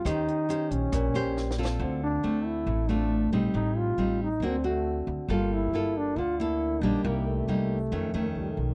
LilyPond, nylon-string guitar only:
\new Staff \with { instrumentName = "Nylon-string guitar" } { \time 4/4 \key d \minor \tempo 4 = 137 << { <des' g' c''>4 <des' g' c''>4. <des' g' c''>4 <c' f' a'>8~ | <c' f' a'>4 <a c'>4. <a c' f'>4 <g c' ees'>8~ | <g c' ees'>4 <g c' ees'>8 r8 <bes c' fis'>8 <c' fis'>4. | <bes f' a'>4 <bes f' a'>4 r8 <bes a'>4 <g bes ees'>8~ |
<g bes ees'>4 <g bes ees'>8 r8 <ees a cis'>8 <ees a cis'>4. | } \\ { ees2 bes,2 | d2 a,2 | a,2 d2 | g2 d2 |
c2 f,2 | } >> }